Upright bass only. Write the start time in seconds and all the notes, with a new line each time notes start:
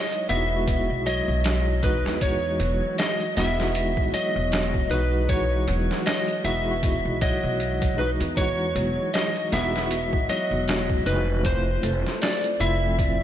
0.30 E1
0.90 B1
1.28 B1
2.05 E2
2.60 E1
3.37 E1
4.36 E1
4.91 B1
5.68 E1
6.44 E1
7.05 B1
7.43 B1
8.20 E2
8.76 E1
9.53 E1
10.51 E1
11.06 F1
11.83 F1
12.60 F1